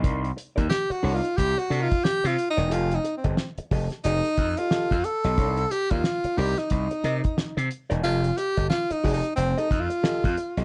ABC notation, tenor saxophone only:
X:1
M:4/4
L:1/16
Q:"Swing 16ths" 1/4=90
K:Cdor
V:1 name="Tenor saxophone"
z4 (3G2 ^F2 =F2 (3G2 ^F2 =F2 (3G2 F2 E2 | (3F2 E2 C2- C z3 E3 F3 A2- | A2 G F3 G E6 z3 | F2 G2 (3F2 E2 E2 (3C2 E2 F2- F4 |]